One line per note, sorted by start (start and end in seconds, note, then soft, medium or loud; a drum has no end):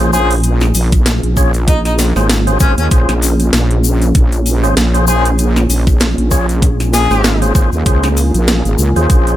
0.00 0.73 A#1 loud
0.00 9.37 A#3 medium
0.00 0.11 C#4 medium
0.00 9.09 C#4 medium
0.00 0.11 F4 medium
0.00 9.37 F4 medium
0.00 0.11 G#4 medium
0.00 9.37 G#4 medium
0.00 0.11 C5 medium
0.00 closed hi-hat soft
0.00 impact medium
0.13 0.36 C#4 medium
0.13 0.36 F4 medium
0.13 0.29 G#4 medium
0.13 0.36 G#4 medium
0.13 0.36 C5 loud
0.13 shaker medium
0.31 closed hi-hat medium
0.31 shaker soft
0.32 closed hi-hat soft
0.34 closed hi-hat soft
0.36 closed hi-hat soft
0.38 closed hi-hat soft
0.40 closed hi-hat soft
0.42 closed hi-hat soft
0.42 shaker medium
0.44 closed hi-hat medium
0.61 snare medium
0.61 shaker soft
0.75 1.21 A#1 loud
0.75 open hi-hat medium
0.75 shaker loud
0.92 kick loud
0.92 closed hi-hat medium
0.92 shaker soft
1.06 snare loud
1.06 closed hi-hat medium
1.06 shaker medium
1.23 2.13 A#1 loud
1.23 closed hi-hat soft
1.37 1.52 C#4 medium
1.37 1.52 F4 medium
1.37 1.52 G#4 medium
1.37 1.52 C#5 loud
1.37 kick medium
1.37 shaker medium
1.54 closed hi-hat soft
1.54 shaker soft
1.67 1.79 D#4 medium
1.67 kick loud
1.67 closed hi-hat medium
1.67 shaker medium
1.85 1.94 D#4 medium
1.85 snare soft
1.85 closed hi-hat soft
1.85 shaker soft
1.99 snare medium
1.99 open hi-hat medium
1.99 shaker medium
2.16 2.58 G#1 loud
2.16 2.28 C#4 medium
2.16 2.28 F4 medium
2.16 2.28 G#4 medium
2.16 2.28 C5 medium
2.16 snare soft
2.16 shaker soft
2.29 snare loud
2.29 closed hi-hat medium
2.29 shaker medium
2.47 2.58 C#4 medium
2.47 2.58 F4 medium
2.47 2.58 G#4 medium
2.47 2.58 C5 medium
2.47 closed hi-hat soft
2.47 shaker soft
2.60 2.75 G#1 loud
2.60 2.75 C#4 medium
2.60 2.72 C#4 medium
2.60 2.75 F4 medium
2.60 2.75 G#4 medium
2.60 2.76 C5 medium
2.60 kick loud
2.60 shaker loud
2.78 2.89 D#2 loud
2.78 2.87 C#4 medium
2.78 closed hi-hat medium
2.78 shaker soft
2.91 3.06 A#1 loud
2.91 3.14 C#4 medium
2.91 3.14 F4 medium
2.91 3.14 G#4 medium
2.91 3.14 C5 medium
2.91 kick loud
2.91 closed hi-hat medium
2.91 shaker medium
3.09 3.51 A#1 loud
3.09 snare medium
3.09 closed hi-hat soft
3.09 shaker soft
3.22 open hi-hat medium
3.22 shaker loud
3.40 closed hi-hat medium
3.40 shaker soft
3.53 4.13 A#1 loud
3.53 snare loud
3.53 closed hi-hat medium
3.53 shaker medium
3.71 closed hi-hat soft
3.84 shaker medium
4.02 closed hi-hat soft
4.02 shaker soft
4.15 4.57 A#1 loud
4.15 kick loud
4.15 closed hi-hat medium
4.15 shaker soft
4.32 closed hi-hat soft
4.32 shaker soft
4.46 open hi-hat medium
4.46 shaker loud
4.57 4.75 A1 loud
4.63 4.75 C#4 medium
4.63 4.75 F4 medium
4.63 4.75 G#4 medium
4.63 4.75 C5 medium
4.63 shaker soft
4.77 5.67 A#1 loud
4.77 snare loud
4.77 closed hi-hat medium
4.77 shaker medium
4.94 5.06 C#4 medium
4.94 5.06 F4 medium
4.94 5.06 G#4 medium
4.94 5.06 C5 medium
4.94 closed hi-hat soft
4.94 shaker soft
5.07 5.30 C#4 loud
5.07 5.30 F4 medium
5.07 5.24 G#4 medium
5.07 5.31 G#4 medium
5.07 5.31 C5 loud
5.07 shaker loud
5.25 closed hi-hat medium
5.25 shaker soft
5.39 closed hi-hat medium
5.39 shaker medium
5.56 snare medium
5.56 shaker soft
5.69 6.15 A#1 loud
5.69 open hi-hat medium
5.69 shaker loud
5.87 kick loud
5.87 shaker soft
6.00 snare loud
6.00 closed hi-hat medium
6.00 shaker medium
6.18 7.08 A#1 loud
6.18 closed hi-hat soft
6.31 6.47 C#4 medium
6.31 6.47 F4 medium
6.31 6.47 G#4 medium
6.31 6.47 C#5 loud
6.31 kick medium
6.31 shaker loud
6.49 closed hi-hat soft
6.49 shaker soft
6.62 kick loud
6.62 closed hi-hat medium
6.62 shaker soft
6.80 snare soft
6.80 closed hi-hat soft
6.80 shaker soft
6.93 7.42 G#4 loud
6.93 snare medium
6.93 open hi-hat medium
6.93 shaker loud
7.10 7.53 G#1 loud
7.10 7.22 C#4 medium
7.10 7.22 F4 medium
7.10 7.22 G#4 medium
7.10 7.22 C5 medium
7.10 snare soft
7.10 shaker soft
7.24 snare loud
7.24 shaker medium
7.42 7.53 C#4 medium
7.42 7.53 F4 medium
7.42 7.53 G#4 medium
7.42 7.53 C5 medium
7.42 closed hi-hat soft
7.42 shaker soft
7.55 7.70 G#1 loud
7.55 7.70 C#4 medium
7.55 7.70 F4 medium
7.55 7.70 G#4 medium
7.55 7.70 C5 medium
7.55 kick loud
7.55 shaker medium
7.72 7.84 D#2 medium
7.72 shaker soft
7.86 8.32 C#2 loud
7.86 8.09 C#4 medium
7.86 8.09 F4 medium
7.86 8.09 G#4 medium
7.86 8.09 C5 medium
7.86 kick loud
7.86 closed hi-hat medium
7.86 shaker medium
8.03 snare soft
8.03 closed hi-hat soft
8.03 shaker soft
8.17 open hi-hat medium
8.17 shaker medium
8.34 8.63 A#1 medium
8.34 closed hi-hat medium
8.34 shaker soft
8.48 snare loud
8.48 closed hi-hat medium
8.48 shaker soft
8.65 8.77 G#1 loud
8.65 closed hi-hat soft
8.65 shaker soft
8.78 8.93 C#2 loud
8.78 shaker loud
8.96 9.08 D#2 loud
8.96 9.37 C#4 medium
8.96 9.37 F4 medium
8.96 9.37 G#4 medium
8.96 9.37 C5 medium
8.96 closed hi-hat soft
8.96 shaker soft
9.10 9.37 A#1 loud
9.10 9.37 A#4 medium
9.10 kick loud
9.10 closed hi-hat medium
9.10 shaker medium
9.27 closed hi-hat soft
9.27 shaker soft